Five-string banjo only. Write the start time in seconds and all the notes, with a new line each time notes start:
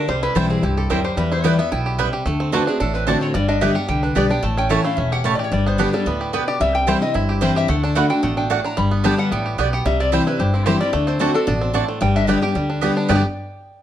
0.09 G3
0.23 E4
0.36 G3
0.50 C4
0.63 E4
0.77 G4
0.90 G3
1.05 G4
1.17 G3
1.32 E4
1.44 G3
1.59 B3
1.72 E4
1.86 G4
1.99 G3
2.13 G4
2.26 A3
2.40 C4
2.53 A3
2.67 D4
2.80 D4
2.94 C4
3.07 D4
3.21 A3
3.34 G3
3.48 D4
3.61 G3
3.75 G4
3.89 G3
4.03 D4
4.16 B3
4.30 D4
4.43 A3
4.57 C#4
4.71 E4
4.85 A3
4.98 C#4
5.12 G4
5.25 C#4
5.39 G4
5.52 G3
5.66 B3
5.80 D4
5.94 G3
6.07 B3
6.21 G4
6.34 B3
6.48 G4
6.61 G3
6.88 G3
7.02 C4
7.15 E4
7.29 G4
7.42 G3
7.56 G4
7.69 A3
7.84 D4
7.96 A3
8.10 D4
8.23 A3
8.37 D4
8.51 D4
8.64 D4
8.77 G3
8.91 B3
9.04 D4
9.18 G3
9.32 B3
9.46 G4
9.59 B3
9.73 G4
9.86 G3
10.00 C4
10.13 G3
10.27 E4
10.40 G4
10.54 C4
10.66 G4
10.80 G3
10.93 A3
11.07 C4
11.20 A3
11.34 D4
11.48 D4
11.61 C4
11.74 D4
11.88 A3
12.02 G3
12.16 D4
12.29 G3
12.42 G4
12.56 G3
12.70 D4
12.83 B3
12.97 D4
13.09 G3 B3
13.13 D4 G4